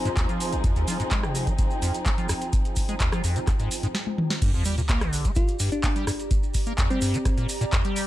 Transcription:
Already playing: string section F3 C4 D#4 G#4, ambient pad F4 C5 G#5
0.05 acid bass G#2, closed hi-hat, maracas
0.17 acid bass D#2, kick, clap, closed hi-hat, maracas
0.29 acid bass F3, closed hi-hat, maracas
0.36 ambient pad G5
0.40 open hi-hat, maracas
0.53 acid bass F1, closed hi-hat, maracas
0.64 acid bass F2, kick, closed hi-hat, maracas
0.76 acid bass D#2, closed hi-hat, maracas
0.88 acid bass F3, open hi-hat, maracas
1.00 acid bass G#2, closed hi-hat, maracas
1.11 acid bass G#3, kick, clap, closed hi-hat, maracas
1.23 acid bass C3, cross-stick, maracas
1.35 open hi-hat, maracas
1.47 acid bass G#3, kick, closed hi-hat, maracas
1.58 kick, closed hi-hat, maracas
1.71 maracas
1.82 acid bass F2, open hi-hat, maracas
1.94 closed hi-hat, maracas
2.06 acid bass G#3, kick, clap, closed hi-hat, maracas
2.18 acid bass F3, closed hi-hat, maracas
2.29 acid bass F2, cross-stick, open hi-hat, maracas
2.41 closed hi-hat, maracas
2.53 kick, closed hi-hat, maracas
2.65 closed hi-hat, maracas
2.76 kick, open hi-hat, maracas
2.89 acid bass G#3, closed hi-hat, maracas
3.00 acid bass D#2, kick, clap, closed hi-hat, maracas
3.12 acid bass F3, cross-stick, closed hi-hat, maracas
3.24 acid bass F2, open hi-hat, maracas
3.36 acid bass F3, closed hi-hat, maracas
3.47 acid bass F2, kick, cross-stick, clap, closed hi-hat, maracas
3.59 acid bass G#2, closed hi-hat, maracas
3.71 open hi-hat, maracas
3.83 acid bass G#2, closed hi-hat, maracas
3.95 snare
4.07 high tom
4.18 mid tom
4.30 snare
4.42 acid bass G2, ambient pad G4, kick, closed hi-hat, crash, sub drop, maracas
4.54 acid bass F2, maracas
4.65 acid bass G3, open hi-hat, maracas
4.78 acid bass A#2, closed hi-hat, maracas
4.89 acid bass A#3, kick, clap, closed hi-hat, maracas
4.98 acid bass D3, ambient pad D5, cross-stick, closed hi-hat, maracas
5.13 open hi-hat, maracas
5.24 acid bass A#3, kick, closed hi-hat, maracas
5.35 fm electric piano F4, ambient pad A#5, kick, closed hi-hat, maracas
5.48 closed hi-hat, maracas
5.59 acid bass G2, open hi-hat, maracas
5.72 fm electric piano D4, closed hi-hat, maracas
5.83 acid bass A#3, kick, clap, closed hi-hat, maracas
5.96 acid bass G3, closed hi-hat, maracas
6.07 acid bass G2, cross-stick, open hi-hat, maracas
6.19 closed hi-hat, maracas
6.31 kick, closed hi-hat, maracas
6.43 maracas
6.54 kick, open hi-hat, maracas
6.66 acid bass A#3, closed hi-hat, maracas
6.78 acid bass F2, kick, clap, closed hi-hat, maracas
6.90 acid bass G3, fm electric piano C4, closed hi-hat, maracas
7.01 acid bass G2, open hi-hat, maracas
7.14 acid bass G3, closed hi-hat, maracas
7.25 acid bass G2, kick, cross-stick, closed hi-hat, maracas
7.37 acid bass A#2, closed hi-hat, maracas
7.49 open hi-hat, maracas
7.61 acid bass A#2, closed hi-hat, maracas
7.73 acid bass F2, kick, clap, closed hi-hat, maracas
7.84 acid bass G3, closed hi-hat, maracas
7.96 open hi-hat, maracas

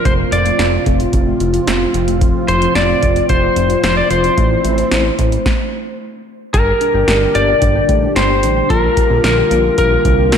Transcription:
Already playing: analog synth pad F3
0.05 analog synth bass F1, analog synth pad A2 C3 C4 F4, synth pluck A3, lead electric guitar C5, kick, closed hi-hat
0.32 analog synth bass F1, synth pluck F3, lead electric guitar D5, closed hi-hat
0.46 synth pluck A3, closed hi-hat
0.59 analog synth bass F1, synth pluck F4, snare, closed hi-hat
0.73 synth pluck F3
0.86 analog synth bass F1, synth pluck A3, kick, closed hi-hat
1.00 synth pluck F4, closed hi-hat
1.13 analog synth bass F1, synth pluck F3, kick, closed hi-hat
1.27 synth pluck A3
1.40 analog synth bass F1, synth pluck F4, closed hi-hat
1.54 synth pluck F3, closed hi-hat
1.67 analog synth bass F1, synth pluck A3, snare, closed hi-hat
1.81 synth pluck F4
1.94 analog synth bass F1, analog synth pad A2, synth pluck F3, closed hi-hat
2.08 synth pluck A3, closed hi-hat
2.21 synth pluck F3, kick, closed hi-hat
2.35 synth pluck A3
2.48 analog synth bass F1, synth pluck F4, lead electric guitar C5, closed hi-hat
2.62 synth pluck F3, closed hi-hat
2.75 analog synth bass F1, lead electric guitar D5, snare, closed hi-hat
2.89 synth pluck F4
3.02 analog synth bass F1, synth pluck F3, kick, closed hi-hat
3.16 synth pluck A3, closed hi-hat
3.29 analog synth bass F1, synth pluck F4, lead electric guitar C5, kick, closed hi-hat
3.43 synth pluck F3
3.56 analog synth bass F1, synth pluck A3, closed hi-hat
3.70 synth pluck F4, closed hi-hat
3.84 analog synth bass F1, synth pluck F3, lead electric guitar C5, snare, closed hi-hat
3.97 synth pluck A3, lead electric guitar D5
4.11 analog synth bass F1, synth pluck F4, lead electric guitar C5, closed hi-hat
4.24 synth pluck F3, closed hi-hat
4.38 analog synth bass A1, analog synth pad E3 C4 E4, synth pluck A3, kick, closed hi-hat
4.65 analog synth bass A1, synth pluck E3, closed hi-hat
4.78 synth pluck A3, closed hi-hat
4.92 analog synth bass A1, synth pluck E4, snare, closed hi-hat
5.05 synth pluck E3
5.19 analog synth bass A1, synth pluck A3, kick, closed hi-hat
5.32 synth pluck E4, closed hi-hat
5.46 kick, snare
6.54 analog synth bass G1, analog synth pad A#2 D3 G3 D4 G4, lead electric guitar A#4, synth pluck G5, kick, closed hi-hat
6.67 synth pluck G4
6.81 synth pluck D4, closed hi-hat
6.94 analog synth bass G1, synth pluck G5
7.08 analog synth bass G1, synth pluck G4, snare, closed hi-hat
7.21 synth pluck D4
7.35 analog synth bass G1, lead electric guitar D5, synth pluck G5, closed hi-hat
7.49 synth pluck G4
7.62 analog synth bass G1, synth pluck D4, kick, closed hi-hat
7.75 synth pluck G5
7.89 analog synth bass A1, synth pluck G4, kick, closed hi-hat
8.02 synth pluck D4
8.16 analog synth bass G1, lead electric guitar C5, synth pluck G5, snare, closed hi-hat
8.30 synth pluck G4
8.43 analog synth bass A1, synth pluck D4, closed hi-hat
8.57 synth pluck G5
8.70 analog synth bass A#1, analog synth pad D3 A#3 F4 G4, synth pluck F4, lead electric guitar A#4, kick, closed hi-hat
8.84 synth pluck D4
8.97 synth pluck G4, kick, closed hi-hat
9.11 analog synth bass A#1, synth pluck F4
9.24 analog synth bass A#1, synth pluck D4, lead electric guitar A#4, snare, closed hi-hat
9.38 synth pluck G4
9.51 analog synth bass A#1, synth pluck F4, closed hi-hat
9.78 analog synth bass A#1, lead electric guitar A#4, kick, closed hi-hat
9.92 synth pluck F4
10.05 analog synth bass C2, synth pluck D4, kick, closed hi-hat
10.19 synth pluck G4
10.32 analog synth bass A#1, synth pluck F4, snare, closed hi-hat

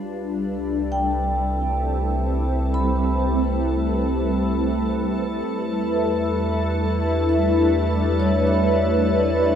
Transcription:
Already playing: ambient pad G3 D4 B4
0.01 sub bass C2, synth drone A3 A4
0.73 ambient pad C4
0.83 ambient pad E4
0.92 vibraphone G5
2.74 vibraphone B5
5.46 sub bass E2
6.12 ambient pad D4
7.29 vibraphone E5
8.20 vibraphone C#5
8.47 vibraphone E5

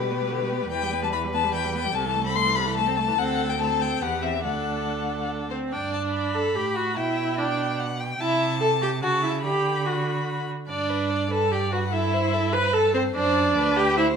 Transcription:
Already playing: cello B2, violin G4 B4
0.01 viola G3
0.11 viola B3
0.21 viola G3
0.31 viola D3
0.42 viola G3
0.52 viola B3
0.62 viola G3
0.72 cello E2, viola E3, violin B4 G5
0.82 viola G3
0.93 viola B3
1.03 viola G3, violin A5
1.13 viola E3, violin B5
1.24 viola G3
1.34 viola B3, violin A5
1.44 viola G3
1.54 viola E3, violin G5
1.64 viola G3
1.75 viola B3, violin G5
1.85 viola G3
1.95 cello C2, viola C3, violin A4 A5
2.05 viola E3
2.15 viola A3
2.25 viola C4, violin B5
2.35 viola A3, violin C6
2.46 viola E3
2.56 viola C3, violin B5
2.66 viola E3
2.76 viola A3, violin A5
2.87 viola C4
2.97 viola A3, violin A5
3.07 viola E3
3.18 cello D2, viola C4, violin A4 F#5
3.50 violin G5
3.59 viola C4, violin A4 A5
3.81 violin G5
4.01 cello E2, viola B3, violin G4 F#5
4.22 viola C4, violin E5
4.44 cello D2, viola D4, violin A4 F#5
5.50 viola C4, violin C5
5.72 cello G2, viola D4, violin D5 G5
5.93 violin A5
6.14 violin B5
6.34 viola A4, violin A5
6.55 cello A2, viola G4, violin G5
6.76 viola F#4, violin F#5
6.96 cello B2, viola E4, violin E5 G5
7.38 viola D4, violin D5 G5
7.80 violin F#5
8.00 violin G5
8.20 cello C3, viola E4, violin E5 A5
8.61 viola A4, violin A5
8.82 viola G4, violin G5
9.02 cello C#3, viola F#4, violin F#5 A5
9.23 viola E4, violin E5
9.43 cello D3, viola G4, violin G5 B5
9.86 viola F#4, violin F#5
10.69 cello G2, viola D4, violin D5
10.89 violin B4
11.10 violin D5
11.31 viola A4, violin B4 A5
11.51 viola G4, violin D5 G5
11.72 viola F#4, violin B4 F#5
11.92 viola E4, violin A4 E5
12.13 violin C5
12.33 violin A4
12.53 viola B4, violin C5 B5
12.73 viola A4, violin A4 A5
12.94 viola C4, violin C5
13.15 cello F#2, viola D4, violin C5 D5
13.56 cello D2, violin B4
13.76 viola G4, violin G5
13.97 viola E4, violin C5 E5

